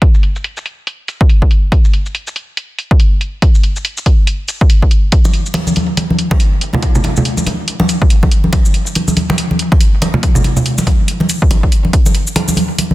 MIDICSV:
0, 0, Header, 1, 2, 480
1, 0, Start_track
1, 0, Tempo, 425532
1, 20, Time_signature, 4, 2, 24, 8
1, 14601, End_track
2, 0, Start_track
2, 0, Title_t, "Drums"
2, 19, Note_on_c, 9, 42, 72
2, 21, Note_on_c, 9, 36, 112
2, 132, Note_off_c, 9, 42, 0
2, 134, Note_off_c, 9, 36, 0
2, 162, Note_on_c, 9, 82, 77
2, 260, Note_on_c, 9, 42, 48
2, 275, Note_off_c, 9, 82, 0
2, 373, Note_off_c, 9, 42, 0
2, 403, Note_on_c, 9, 82, 52
2, 500, Note_on_c, 9, 42, 71
2, 516, Note_off_c, 9, 82, 0
2, 613, Note_off_c, 9, 42, 0
2, 643, Note_on_c, 9, 82, 80
2, 741, Note_on_c, 9, 42, 49
2, 755, Note_off_c, 9, 82, 0
2, 854, Note_off_c, 9, 42, 0
2, 981, Note_on_c, 9, 42, 72
2, 1094, Note_off_c, 9, 42, 0
2, 1221, Note_on_c, 9, 42, 48
2, 1221, Note_on_c, 9, 82, 81
2, 1334, Note_off_c, 9, 42, 0
2, 1334, Note_off_c, 9, 82, 0
2, 1362, Note_on_c, 9, 36, 94
2, 1461, Note_on_c, 9, 42, 73
2, 1475, Note_off_c, 9, 36, 0
2, 1574, Note_off_c, 9, 42, 0
2, 1602, Note_on_c, 9, 36, 57
2, 1701, Note_on_c, 9, 42, 49
2, 1715, Note_off_c, 9, 36, 0
2, 1813, Note_off_c, 9, 42, 0
2, 1940, Note_on_c, 9, 36, 111
2, 1942, Note_on_c, 9, 42, 73
2, 2053, Note_off_c, 9, 36, 0
2, 2055, Note_off_c, 9, 42, 0
2, 2083, Note_on_c, 9, 82, 78
2, 2182, Note_on_c, 9, 42, 50
2, 2196, Note_off_c, 9, 82, 0
2, 2295, Note_off_c, 9, 42, 0
2, 2323, Note_on_c, 9, 82, 52
2, 2422, Note_on_c, 9, 42, 74
2, 2436, Note_off_c, 9, 82, 0
2, 2535, Note_off_c, 9, 42, 0
2, 2563, Note_on_c, 9, 82, 76
2, 2661, Note_on_c, 9, 42, 48
2, 2676, Note_off_c, 9, 82, 0
2, 2774, Note_off_c, 9, 42, 0
2, 2901, Note_on_c, 9, 42, 72
2, 3014, Note_off_c, 9, 42, 0
2, 3142, Note_on_c, 9, 42, 50
2, 3255, Note_off_c, 9, 42, 0
2, 3283, Note_on_c, 9, 36, 97
2, 3380, Note_on_c, 9, 42, 75
2, 3395, Note_off_c, 9, 36, 0
2, 3493, Note_off_c, 9, 42, 0
2, 3620, Note_on_c, 9, 42, 48
2, 3733, Note_off_c, 9, 42, 0
2, 3860, Note_on_c, 9, 42, 76
2, 3861, Note_on_c, 9, 36, 113
2, 3973, Note_off_c, 9, 42, 0
2, 3974, Note_off_c, 9, 36, 0
2, 4003, Note_on_c, 9, 82, 76
2, 4100, Note_on_c, 9, 42, 52
2, 4116, Note_off_c, 9, 82, 0
2, 4213, Note_off_c, 9, 42, 0
2, 4243, Note_on_c, 9, 82, 50
2, 4340, Note_on_c, 9, 42, 75
2, 4356, Note_off_c, 9, 82, 0
2, 4453, Note_off_c, 9, 42, 0
2, 4482, Note_on_c, 9, 82, 75
2, 4580, Note_on_c, 9, 42, 52
2, 4581, Note_on_c, 9, 36, 59
2, 4595, Note_off_c, 9, 82, 0
2, 4693, Note_off_c, 9, 42, 0
2, 4694, Note_off_c, 9, 36, 0
2, 4819, Note_on_c, 9, 42, 76
2, 4932, Note_off_c, 9, 42, 0
2, 5058, Note_on_c, 9, 42, 52
2, 5058, Note_on_c, 9, 82, 78
2, 5171, Note_off_c, 9, 42, 0
2, 5171, Note_off_c, 9, 82, 0
2, 5203, Note_on_c, 9, 36, 98
2, 5298, Note_on_c, 9, 42, 78
2, 5315, Note_off_c, 9, 36, 0
2, 5411, Note_off_c, 9, 42, 0
2, 5442, Note_on_c, 9, 36, 57
2, 5538, Note_on_c, 9, 42, 51
2, 5555, Note_off_c, 9, 36, 0
2, 5651, Note_off_c, 9, 42, 0
2, 5776, Note_on_c, 9, 42, 78
2, 5780, Note_on_c, 9, 36, 115
2, 5889, Note_off_c, 9, 42, 0
2, 5893, Note_off_c, 9, 36, 0
2, 5919, Note_on_c, 9, 82, 71
2, 5923, Note_on_c, 9, 62, 54
2, 6018, Note_on_c, 9, 42, 53
2, 6032, Note_off_c, 9, 82, 0
2, 6035, Note_off_c, 9, 62, 0
2, 6131, Note_off_c, 9, 42, 0
2, 6160, Note_on_c, 9, 82, 48
2, 6248, Note_on_c, 9, 62, 81
2, 6258, Note_on_c, 9, 42, 77
2, 6273, Note_off_c, 9, 82, 0
2, 6361, Note_off_c, 9, 62, 0
2, 6371, Note_off_c, 9, 42, 0
2, 6395, Note_on_c, 9, 63, 59
2, 6399, Note_on_c, 9, 82, 72
2, 6497, Note_on_c, 9, 42, 53
2, 6505, Note_off_c, 9, 63, 0
2, 6505, Note_on_c, 9, 63, 66
2, 6512, Note_off_c, 9, 82, 0
2, 6610, Note_off_c, 9, 42, 0
2, 6618, Note_off_c, 9, 63, 0
2, 6737, Note_on_c, 9, 42, 82
2, 6737, Note_on_c, 9, 62, 53
2, 6850, Note_off_c, 9, 42, 0
2, 6850, Note_off_c, 9, 62, 0
2, 6886, Note_on_c, 9, 63, 67
2, 6977, Note_on_c, 9, 42, 54
2, 6999, Note_off_c, 9, 63, 0
2, 7090, Note_off_c, 9, 42, 0
2, 7118, Note_on_c, 9, 62, 75
2, 7122, Note_on_c, 9, 36, 101
2, 7218, Note_on_c, 9, 42, 80
2, 7231, Note_off_c, 9, 62, 0
2, 7235, Note_off_c, 9, 36, 0
2, 7331, Note_off_c, 9, 42, 0
2, 7459, Note_on_c, 9, 42, 52
2, 7572, Note_off_c, 9, 42, 0
2, 7591, Note_on_c, 9, 63, 56
2, 7597, Note_on_c, 9, 62, 51
2, 7607, Note_on_c, 9, 64, 99
2, 7699, Note_on_c, 9, 42, 79
2, 7700, Note_on_c, 9, 36, 123
2, 7704, Note_off_c, 9, 63, 0
2, 7710, Note_off_c, 9, 62, 0
2, 7720, Note_off_c, 9, 64, 0
2, 7811, Note_off_c, 9, 42, 0
2, 7813, Note_off_c, 9, 36, 0
2, 7842, Note_on_c, 9, 82, 71
2, 7843, Note_on_c, 9, 64, 81
2, 7940, Note_on_c, 9, 42, 55
2, 7946, Note_on_c, 9, 62, 74
2, 7954, Note_off_c, 9, 82, 0
2, 7955, Note_off_c, 9, 64, 0
2, 8053, Note_off_c, 9, 42, 0
2, 8058, Note_off_c, 9, 62, 0
2, 8083, Note_on_c, 9, 82, 49
2, 8094, Note_on_c, 9, 64, 83
2, 8180, Note_on_c, 9, 42, 78
2, 8196, Note_off_c, 9, 82, 0
2, 8206, Note_off_c, 9, 64, 0
2, 8293, Note_off_c, 9, 42, 0
2, 8317, Note_on_c, 9, 63, 67
2, 8322, Note_on_c, 9, 82, 73
2, 8421, Note_on_c, 9, 42, 54
2, 8422, Note_off_c, 9, 63, 0
2, 8422, Note_on_c, 9, 63, 70
2, 8427, Note_on_c, 9, 62, 51
2, 8435, Note_off_c, 9, 82, 0
2, 8534, Note_off_c, 9, 42, 0
2, 8535, Note_off_c, 9, 63, 0
2, 8539, Note_off_c, 9, 62, 0
2, 8660, Note_on_c, 9, 42, 79
2, 8773, Note_off_c, 9, 42, 0
2, 8794, Note_on_c, 9, 62, 74
2, 8806, Note_on_c, 9, 63, 67
2, 8900, Note_on_c, 9, 42, 54
2, 8900, Note_on_c, 9, 82, 73
2, 8907, Note_off_c, 9, 62, 0
2, 8919, Note_off_c, 9, 63, 0
2, 9013, Note_off_c, 9, 42, 0
2, 9013, Note_off_c, 9, 82, 0
2, 9043, Note_on_c, 9, 36, 103
2, 9140, Note_on_c, 9, 42, 80
2, 9156, Note_off_c, 9, 36, 0
2, 9253, Note_off_c, 9, 42, 0
2, 9281, Note_on_c, 9, 62, 51
2, 9283, Note_on_c, 9, 36, 60
2, 9379, Note_on_c, 9, 42, 54
2, 9394, Note_off_c, 9, 62, 0
2, 9396, Note_off_c, 9, 36, 0
2, 9492, Note_off_c, 9, 42, 0
2, 9519, Note_on_c, 9, 63, 60
2, 9617, Note_on_c, 9, 62, 74
2, 9620, Note_on_c, 9, 42, 77
2, 9621, Note_on_c, 9, 36, 122
2, 9632, Note_off_c, 9, 63, 0
2, 9730, Note_off_c, 9, 62, 0
2, 9733, Note_off_c, 9, 42, 0
2, 9734, Note_off_c, 9, 36, 0
2, 9761, Note_on_c, 9, 82, 72
2, 9860, Note_on_c, 9, 42, 53
2, 9874, Note_off_c, 9, 82, 0
2, 9973, Note_off_c, 9, 42, 0
2, 10001, Note_on_c, 9, 82, 47
2, 10100, Note_on_c, 9, 42, 74
2, 10107, Note_on_c, 9, 62, 53
2, 10114, Note_off_c, 9, 82, 0
2, 10213, Note_off_c, 9, 42, 0
2, 10220, Note_off_c, 9, 62, 0
2, 10239, Note_on_c, 9, 63, 68
2, 10242, Note_on_c, 9, 82, 74
2, 10341, Note_on_c, 9, 42, 53
2, 10342, Note_off_c, 9, 63, 0
2, 10342, Note_on_c, 9, 63, 63
2, 10355, Note_off_c, 9, 82, 0
2, 10453, Note_off_c, 9, 42, 0
2, 10455, Note_off_c, 9, 63, 0
2, 10487, Note_on_c, 9, 62, 73
2, 10581, Note_on_c, 9, 42, 77
2, 10600, Note_off_c, 9, 62, 0
2, 10693, Note_off_c, 9, 42, 0
2, 10726, Note_on_c, 9, 63, 61
2, 10820, Note_on_c, 9, 42, 51
2, 10839, Note_off_c, 9, 63, 0
2, 10933, Note_off_c, 9, 42, 0
2, 10963, Note_on_c, 9, 36, 109
2, 10966, Note_on_c, 9, 62, 51
2, 11061, Note_on_c, 9, 42, 77
2, 11076, Note_off_c, 9, 36, 0
2, 11079, Note_off_c, 9, 62, 0
2, 11174, Note_off_c, 9, 42, 0
2, 11300, Note_on_c, 9, 42, 52
2, 11302, Note_on_c, 9, 62, 68
2, 11413, Note_off_c, 9, 42, 0
2, 11415, Note_off_c, 9, 62, 0
2, 11436, Note_on_c, 9, 64, 86
2, 11447, Note_on_c, 9, 63, 59
2, 11539, Note_on_c, 9, 42, 75
2, 11541, Note_on_c, 9, 36, 124
2, 11549, Note_off_c, 9, 64, 0
2, 11560, Note_off_c, 9, 63, 0
2, 11652, Note_off_c, 9, 42, 0
2, 11654, Note_off_c, 9, 36, 0
2, 11675, Note_on_c, 9, 64, 75
2, 11683, Note_on_c, 9, 82, 76
2, 11781, Note_on_c, 9, 42, 51
2, 11781, Note_on_c, 9, 62, 44
2, 11788, Note_off_c, 9, 64, 0
2, 11795, Note_off_c, 9, 82, 0
2, 11893, Note_off_c, 9, 42, 0
2, 11894, Note_off_c, 9, 62, 0
2, 11919, Note_on_c, 9, 64, 74
2, 11923, Note_on_c, 9, 82, 52
2, 12021, Note_on_c, 9, 42, 74
2, 12031, Note_off_c, 9, 64, 0
2, 12036, Note_off_c, 9, 82, 0
2, 12134, Note_off_c, 9, 42, 0
2, 12160, Note_on_c, 9, 63, 62
2, 12162, Note_on_c, 9, 82, 75
2, 12166, Note_on_c, 9, 62, 70
2, 12256, Note_off_c, 9, 63, 0
2, 12256, Note_on_c, 9, 63, 66
2, 12261, Note_on_c, 9, 36, 62
2, 12261, Note_on_c, 9, 42, 50
2, 12275, Note_off_c, 9, 82, 0
2, 12279, Note_off_c, 9, 62, 0
2, 12369, Note_off_c, 9, 63, 0
2, 12373, Note_off_c, 9, 36, 0
2, 12374, Note_off_c, 9, 42, 0
2, 12499, Note_on_c, 9, 42, 74
2, 12612, Note_off_c, 9, 42, 0
2, 12636, Note_on_c, 9, 63, 63
2, 12643, Note_on_c, 9, 62, 41
2, 12741, Note_on_c, 9, 42, 51
2, 12741, Note_on_c, 9, 82, 80
2, 12748, Note_off_c, 9, 63, 0
2, 12756, Note_off_c, 9, 62, 0
2, 12854, Note_off_c, 9, 42, 0
2, 12854, Note_off_c, 9, 82, 0
2, 12883, Note_on_c, 9, 36, 106
2, 12980, Note_on_c, 9, 42, 76
2, 12980, Note_on_c, 9, 62, 73
2, 12996, Note_off_c, 9, 36, 0
2, 13092, Note_off_c, 9, 62, 0
2, 13093, Note_off_c, 9, 42, 0
2, 13123, Note_on_c, 9, 36, 61
2, 13221, Note_on_c, 9, 42, 50
2, 13236, Note_off_c, 9, 36, 0
2, 13334, Note_off_c, 9, 42, 0
2, 13364, Note_on_c, 9, 63, 56
2, 13461, Note_on_c, 9, 36, 116
2, 13461, Note_on_c, 9, 42, 72
2, 13476, Note_off_c, 9, 63, 0
2, 13574, Note_off_c, 9, 36, 0
2, 13574, Note_off_c, 9, 42, 0
2, 13604, Note_on_c, 9, 62, 52
2, 13604, Note_on_c, 9, 82, 76
2, 13700, Note_on_c, 9, 42, 51
2, 13716, Note_off_c, 9, 82, 0
2, 13717, Note_off_c, 9, 62, 0
2, 13813, Note_off_c, 9, 42, 0
2, 13843, Note_on_c, 9, 82, 52
2, 13940, Note_on_c, 9, 62, 78
2, 13941, Note_on_c, 9, 42, 71
2, 13956, Note_off_c, 9, 82, 0
2, 14053, Note_off_c, 9, 62, 0
2, 14054, Note_off_c, 9, 42, 0
2, 14079, Note_on_c, 9, 63, 62
2, 14081, Note_on_c, 9, 82, 80
2, 14174, Note_off_c, 9, 63, 0
2, 14174, Note_on_c, 9, 63, 61
2, 14180, Note_on_c, 9, 42, 49
2, 14194, Note_off_c, 9, 82, 0
2, 14286, Note_off_c, 9, 63, 0
2, 14293, Note_off_c, 9, 42, 0
2, 14420, Note_on_c, 9, 62, 49
2, 14422, Note_on_c, 9, 42, 74
2, 14533, Note_off_c, 9, 62, 0
2, 14535, Note_off_c, 9, 42, 0
2, 14559, Note_on_c, 9, 63, 60
2, 14601, Note_off_c, 9, 63, 0
2, 14601, End_track
0, 0, End_of_file